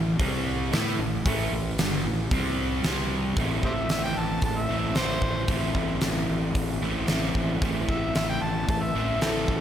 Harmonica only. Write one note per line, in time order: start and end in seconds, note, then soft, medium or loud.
3.66 3.73 G4 medium
3.66 3.73 C5 medium
3.66 3.90 E5 medium
3.91 4.03 E5 medium
4.04 4.19 G5 medium
4.17 4.43 A5 medium
4.45 4.59 A5 medium
4.58 4.99 E5 medium
4.98 5.49 C5 medium
7.91 8.15 E5 medium
8.16 8.28 E5 medium
8.29 8.44 G5 medium
8.42 8.68 A5 loud
8.70 8.84 A5 medium
8.82 9.21 E5 medium
9.22 9.28 C4 medium
9.22 9.29 E4 medium
9.22 9.61 A4 loud